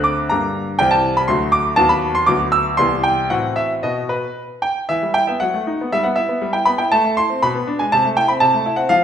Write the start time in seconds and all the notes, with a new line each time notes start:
Already playing: D2 D3 C4 A4
0.04 D6
0.29 G2 D3 A#3 G4 A#5
0.79 C2 E3 C4 G4 G5
0.91 A5
1.17 B5
1.28 D2 F#3 A3 F#4 C6
1.52 D6
1.76 D#2 F#3 B3 F#4 A5
1.89 B5
2.15 C6
2.26 D2 F#3 B3 F#4 D6
2.52 E6
2.77 C2 E3 B3 G4 C6
3.03 G5
3.30 A2 E3 C4 F#4 F#5
3.56 E5
3.83 B2 B3 F#4 D#5
4.09 B4
4.62 G5
4.89 E3 E5
5.03 G3
5.14 E4 G5
5.27 B3 E5
5.40 F#3 F#5
5.54 A3
5.67 D#4
5.81 B3
5.92 G3 E5
6.04 B3 F#5
6.16 E4 E5
6.29 B3
6.42 G3
6.53 E4 G5
6.65 B3 B5
6.78 E4 G5
6.92 A3 A5
7.04 A3
7.17 E4 C6
7.30 C4
7.42 B2 B5
7.55 B3
7.67 D4
7.79 G#3 G#5
7.92 C3 A5
8.05 A3
8.17 E4 G5
8.28 C4 B5
8.40 C3 A5
8.54 A3
8.66 E4
8.76 C4 F#5
8.89 F3 F5